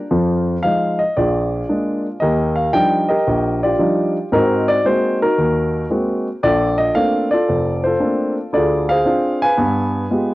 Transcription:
0.11 0.56 F2 medium
0.11 0.56 F3 medium
0.63 1.00 F3 soft
0.63 1.00 G#3 soft
0.63 1.00 D#4 medium
0.63 0.99 F5 medium
0.99 1.16 D#5 medium
1.17 1.62 A#1 medium
1.17 2.18 F4 medium
1.17 2.18 G#4 medium
1.17 2.00 D5 medium
1.69 2.05 G#3 soft
1.69 2.05 A#3 soft
1.69 2.05 D4 medium
2.20 2.67 D#2 medium
2.20 3.08 G4 medium
2.20 3.08 A#4 medium
2.20 2.56 D#5 medium
2.56 2.73 F5 medium
2.73 3.10 F3 soft
2.73 3.10 G3 soft
2.73 3.11 D4 soft
2.73 3.10 D#4 medium
2.73 3.09 G5 loud
3.08 3.62 G4 medium
3.08 4.10 A#4 medium
3.08 3.62 D#5 medium
3.27 3.72 A#1 medium
3.63 4.28 F4 medium
3.63 4.28 G4 medium
3.63 4.11 D5 medium
3.79 4.16 F3 medium
3.79 4.16 G3 soft
3.79 4.16 D4 soft
3.79 4.16 D#4 medium
4.32 4.77 G#2 medium
4.32 4.77 C4 medium
4.32 5.21 D#4 medium
4.32 4.84 F#4 medium
4.32 4.68 A#4 medium
4.68 4.85 D5 loud
4.84 5.21 G#3 soft
4.84 5.21 A#3 soft
4.84 5.22 C4 soft
4.84 5.21 F#4 medium
4.84 5.18 C5 medium
5.22 6.22 D#4 medium
5.22 5.90 F#4 soft
5.22 5.86 A#4 medium
5.38 5.83 D#2 medium
5.90 6.26 G#3 medium
5.90 6.27 A#3 soft
5.90 6.27 C4 soft
5.90 6.27 F#4 medium
6.43 6.88 A#1 medium
6.43 7.32 F4 medium
6.43 7.32 A4 medium
6.43 6.79 D5 medium
6.78 6.93 D#5 medium
6.95 7.32 A3 soft
6.95 7.32 A#3 soft
6.95 7.32 C4 soft
6.95 7.32 D4 medium
6.95 7.27 F5 loud
7.31 7.85 F4 medium
7.31 7.85 A4 medium
7.31 7.84 D5 medium
7.49 7.94 F1 medium
7.84 8.50 F4 medium
7.84 8.50 A4 medium
7.84 8.32 C5 medium
8.00 8.37 A3 soft
8.00 8.37 A#3 soft
8.00 8.37 C4 soft
8.00 8.37 D4 medium
8.53 8.98 D2 medium
8.53 8.98 D3 medium
8.53 9.04 F4 medium
8.53 8.89 G#4 medium
8.53 8.89 D5 medium
8.89 9.55 G#4 medium
8.89 9.55 C5 medium
8.89 9.42 F5 loud
9.05 9.42 C4 soft
9.05 9.43 D4 soft
9.05 9.42 F4 medium
9.42 10.34 B4 medium
9.42 10.34 F5 medium
9.42 10.34 G#5 loud
9.57 10.03 G2 medium
9.57 10.03 B3 medium
10.11 10.34 G#3 soft
10.11 10.34 B3 soft
10.11 10.34 F4 soft
10.11 10.34 G4 soft

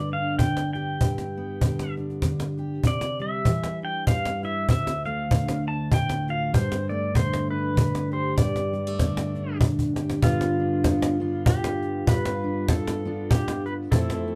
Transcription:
0.00 0.97 G2 medium
0.00 0.38 D3 soft
0.00 0.97 B3 soft
0.13 1.97 D4 soft
0.13 0.38 F5 medium
0.39 0.97 D3 medium
0.39 0.72 G5 medium
0.39 cajon bass medium
0.57 cajon slap medium
0.73 2.58 G4 medium
0.73 1.93 G5 medium
0.73 cajon slap soft
1.01 2.82 G2 medium
1.01 cajon bass medium
1.18 cajon slap soft
1.37 2.82 B3 soft
1.61 2.21 D3 medium
1.61 cajon bass medium
1.79 cajon slap medium
1.97 2.87 D4 soft
1.97 cajon slap soft
2.10 cajon slap soft
2.22 2.81 D3 soft
2.22 cajon bass medium
2.22 cajon slap soft
2.40 cajon slap medium
2.58 2.82 G4 soft
2.58 cajon slap soft
2.83 3.46 C3 medium
2.83 3.23 D5 medium
2.83 cajon bass medium
3.01 cajon slap medium
3.19 4.69 G3 soft
3.19 3.79 E5 medium
3.19 cajon slap soft
3.45 4.66 E3 soft
3.45 cajon bass medium
3.64 cajon slap medium
3.82 5.67 D4 soft
3.82 4.08 G5 medium
4.07 4.66 G2 soft
4.07 4.44 F5 medium
4.07 cajon bass medium
4.25 cajon slap medium
4.43 4.66 E4 medium
4.43 4.70 E5 medium
4.43 cajon slap soft
4.69 6.53 D2 medium
4.69 5.05 E5 medium
4.69 cajon bass medium
4.87 cajon slap medium
5.05 6.56 A3 soft
5.05 5.67 F5 medium
5.05 cajon slap soft
5.31 7.13 D3 medium
5.31 cajon bass medium
5.48 cajon slap medium
5.68 7.50 D4 soft
5.68 5.93 A5 medium
5.92 6.54 A2 soft
5.92 6.30 G5 medium
5.92 cajon bass medium
6.09 cajon slap medium
6.28 6.51 F4 medium
6.28 6.53 F5 medium
6.28 cajon slap soft
6.53 8.37 G2 medium
6.53 6.91 C5 medium
6.53 cajon bass medium
6.72 cajon slap medium
6.89 8.36 A3 medium
6.89 7.14 D5 medium
6.89 cajon slap soft
7.14 7.74 D3 medium
7.14 7.49 C5 medium
7.14 cajon bass medium
7.33 cajon slap medium
7.51 9.35 D4 medium
7.51 8.13 B4 medium
7.75 8.34 D3 medium
7.75 cajon bass medium
7.95 cajon slap medium
8.12 8.90 G4 medium
8.12 8.37 C5 medium
8.12 cajon slap soft
8.37 10.19 G2 medium
8.37 9.57 D5 medium
8.37 cajon bass medium
8.56 cajon slap medium
8.73 8.87 G3 medium
8.73 cajon slap soft
8.87 10.23 A3 soft
8.99 9.59 D3 medium
8.99 cajon bass medium
8.99 cajon slap soft
9.17 cajon slap medium
9.35 10.20 D4 medium
9.35 cajon slap soft
9.60 10.19 D3 medium
9.60 cajon bass medium
9.79 cajon bass soft
9.96 10.20 G4 medium
9.96 cajon slap medium
10.10 cajon slap medium
10.22 12.04 G2 medium
10.22 13.88 G2 medium
10.22 13.88 D3 medium
10.22 13.92 D3 medium
10.22 13.87 B3 medium
10.22 10.85 B3 medium
10.22 10.59 D4 medium
10.22 13.88 F4 medium
10.22 11.46 F4 medium
10.22 11.21 F4 medium
10.22 cajon bass medium
10.41 cajon slap medium
10.60 11.20 D4 medium
10.84 11.19 B3 medium
10.84 cajon bass medium
10.84 cajon slap soft
11.02 cajon slap medium
11.20 12.04 B3 medium
11.20 12.05 D4 medium
11.20 12.07 F4 medium
11.46 12.09 G4 medium
11.46 cajon bass medium
11.64 cajon slap medium
11.82 cajon slap soft
12.06 13.88 G2 medium
12.06 13.07 F4 medium
12.06 12.69 B4 loud
12.06 cajon bass medium
12.25 cajon slap medium
12.44 13.05 D4 medium
12.69 13.04 B3 medium
12.69 13.32 A4 loud
12.69 cajon bass medium
12.69 cajon slap soft
12.88 cajon slap medium
13.05 13.89 B3 medium
13.05 13.90 D4 medium
13.05 13.93 F4 medium
13.31 13.64 G4 loud
13.31 cajon bass medium
13.48 cajon slap medium
13.66 13.73 B4 medium
13.66 cajon slap soft
13.91 14.35 F2 medium
13.91 14.35 C3 medium
13.91 14.35 F3 medium
13.91 14.35 A3 medium
13.91 14.27 C4 medium
13.91 14.35 E4 medium
13.91 14.35 A4 loud
13.91 14.35 E5 medium
13.91 cajon bass medium
14.10 cajon slap medium
14.28 14.35 C4 medium

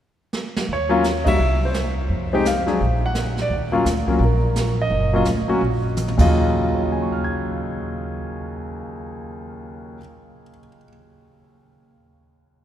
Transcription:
0.33 snare medium
0.56 snare medium
0.69 1.36 D#2 medium
0.69 brush sweep soft
0.73 1.25 C#5 medium
0.89 1.02 F#3 medium
0.89 1.02 A#3 medium
0.89 1.02 C#4 medium
0.89 1.02 F4 medium
1.04 snare medium
1.04 hi-hat pedal medium
1.24 1.38 G3 medium
1.24 1.38 A#3 soft
1.24 1.38 D4 medium
1.24 1.39 F#4 medium
1.24 1.26 D#5 medium
1.24 1.60 E5 medium
1.24 kick medium
1.24 ride medium
1.39 2.06 C2 medium
1.39 brush sweep soft
1.65 1.76 C5 medium
1.74 snare medium
1.74 hi-hat pedal soft
2.09 2.76 F2 medium
2.09 brush sweep soft
2.33 2.44 G#3 medium
2.33 2.44 C4 medium
2.33 2.45 D#4 medium
2.33 2.45 G4 medium
2.45 3.00 F5 medium
2.45 snare medium
2.45 hi-hat pedal medium
2.66 2.79 F#3 medium
2.66 2.79 G#3 medium
2.66 2.79 D4 medium
2.66 2.79 G#4 medium
2.66 snare soft
2.80 3.47 A#1 medium
2.80 brush sweep soft
3.06 3.37 F#5 medium
3.15 snare medium
3.15 hi-hat pedal medium
3.37 snare soft
3.42 3.52 D5 medium
3.50 3.83 D#2 medium
3.50 brush sweep soft
3.72 3.84 F#3 medium
3.72 3.84 A#3 medium
3.72 3.85 C#4 medium
3.72 3.85 F4 medium
3.85 4.18 D2 medium
3.85 snare medium
3.85 hi-hat pedal medium
4.08 4.19 F#3 medium
4.08 4.19 A#3 medium
4.08 4.20 C#4 medium
4.08 4.20 F4 medium
4.08 kick medium
4.19 4.87 A#1 medium
4.19 brush sweep soft
4.25 4.77 A#4 soft
4.56 snare medium
4.56 hi-hat pedal medium
4.82 5.13 D#5 medium
4.90 5.23 F#1 medium
4.90 brush sweep soft
5.13 5.25 F#3 medium
5.13 5.25 A#3 medium
5.13 5.26 C#4 medium
5.13 5.26 F4 medium
5.13 5.23 D#5 medium
5.25 5.59 D2 medium
5.25 snare medium
5.25 hi-hat pedal medium
5.48 5.60 F#3 medium
5.48 5.60 A#3 medium
5.48 5.61 C#4 medium
5.48 5.61 F#4 medium
5.61 6.16 A#1 medium
5.61 brush sweep soft
5.97 hi-hat pedal medium
5.97 mid tom soft
6.08 mid tom medium
6.18 9.97 D#2 medium
6.18 9.94 D#2 medium
6.18 9.98 C#3 medium
6.18 9.99 F#3 medium
6.18 10.01 F4 medium
6.18 9.97 D#5 medium
6.18 kick medium
6.18 crash medium
6.66 10.42 G#4 soft
6.75 10.50 C#5 soft
6.83 10.59 F5 soft
6.92 10.68 G#5 soft
7.02 10.77 C#6 soft
7.12 10.83 F6 soft
7.24 10.89 G#6 soft

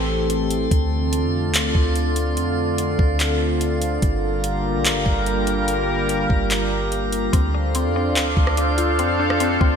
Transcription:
0.00 0.67 A1 loud
0.00 0.68 E3 medium
0.00 3.98 A3 medium
0.00 3.98 C4 medium
0.00 0.68 G4 medium
0.00 0.68 A4 medium
0.00 3.98 A4 medium
0.00 0.68 G5 medium
0.00 3.98 C6 medium
0.30 closed hi-hat medium
0.51 closed hi-hat medium
0.71 1.25 D2 loud
0.71 7.30 D3 medium
0.71 3.99 F4 medium
0.71 7.30 F4 medium
0.71 3.99 D5 medium
0.71 kick loud
0.71 closed hi-hat medium
1.13 closed hi-hat medium
1.23 1.51 F2 medium
1.49 1.74 D2 loud
1.54 clap loud
1.54 closed hi-hat medium
1.75 2.38 D2 loud
1.75 kick medium
1.95 closed hi-hat medium
2.16 closed hi-hat medium
2.37 2.96 F2 loud
2.37 closed hi-hat medium
2.78 closed hi-hat medium
2.99 3.98 D2 loud
2.99 kick loud
3.20 clap loud
3.20 closed hi-hat medium
3.61 closed hi-hat medium
3.82 closed hi-hat medium
4.02 4.76 G1 loud
4.02 7.30 G3 medium
4.02 7.30 A#3 medium
4.02 7.30 G4 medium
4.02 7.30 A#4 medium
4.02 7.30 F5 medium
4.02 7.30 A#5 medium
4.02 kick loud
4.02 closed hi-hat medium
4.44 closed hi-hat medium
4.75 4.92 A#1 loud
4.85 clap loud
4.85 closed hi-hat medium
4.90 5.05 G1 medium
5.06 6.26 G1 loud
5.06 kick medium
5.26 closed hi-hat medium
5.47 closed hi-hat medium
5.68 closed hi-hat medium
6.09 closed hi-hat medium
6.30 7.29 G1 loud
6.30 kick loud
6.51 clap loud
6.51 closed hi-hat medium
6.92 closed hi-hat medium
7.12 closed hi-hat medium
7.33 7.86 D2 loud
7.33 7.74 C4 medium
7.33 9.76 D4 medium
7.33 9.76 F4 medium
7.33 9.76 A4 medium
7.33 9.76 C5 medium
7.33 9.76 D5 medium
7.33 9.76 F5 medium
7.33 9.76 C6 medium
7.33 kick loud
7.33 closed hi-hat medium
7.54 8.57 D4 medium
7.75 7.95 C4 medium
7.75 closed hi-hat medium
7.85 8.12 F2 loud
7.96 8.15 C4 medium
8.11 8.36 D2 medium
8.16 8.98 C4 medium
8.16 clap loud
8.16 closed hi-hat medium
8.37 9.00 D2 loud
8.37 kick loud
8.47 cross-stick loud
8.57 9.18 D4 medium
8.57 closed hi-hat medium
8.78 9.76 F4 medium
8.78 closed hi-hat medium
8.99 9.58 F2 loud
8.99 9.39 C4 medium
8.99 closed hi-hat medium
9.20 9.76 D4 medium
9.30 cross-stick loud
9.40 9.60 C4 medium
9.40 closed hi-hat medium
9.61 9.76 D2 loud
9.61 9.76 C4 medium
9.61 kick loud

